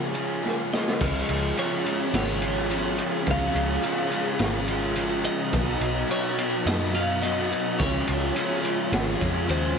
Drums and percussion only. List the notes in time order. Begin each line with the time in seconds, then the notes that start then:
0.01 tambourine
0.14 ride, tambourine
0.28 tambourine
0.42 snare, tambourine
0.58 tambourine
0.72 snare, tambourine
0.87 snare
1.01 kick, crash
1.28 ride
1.56 ride, tambourine
1.86 ride
2.14 snare, ride
2.42 ride
2.70 ride, tambourine
2.98 ride
3.26 kick, ride
3.56 ride
3.82 ride, tambourine
4.11 ride
4.39 snare, ride
4.68 ride
4.95 ride, tambourine
5.24 ride
5.53 kick, ride
5.81 ride
6.08 ride, tambourine
6.38 ride
6.67 snare, ride
6.82 snare
6.94 ride
7.21 ride, tambourine
7.52 ride
7.80 kick, ride
8.07 ride
8.35 ride, tambourine
8.64 ride
8.93 snare, ride
9.08 snare
9.21 kick, ride
9.49 ride, tambourine